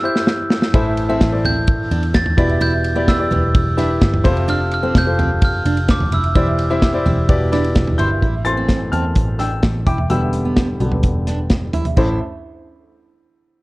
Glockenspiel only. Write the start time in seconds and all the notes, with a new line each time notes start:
0.05 G6
1.45 G6
2.15 A6
2.62 G6
3.08 E6
4.50 F6
4.74 F6
4.98 G6
5.45 F6
5.91 D6
6.14 E6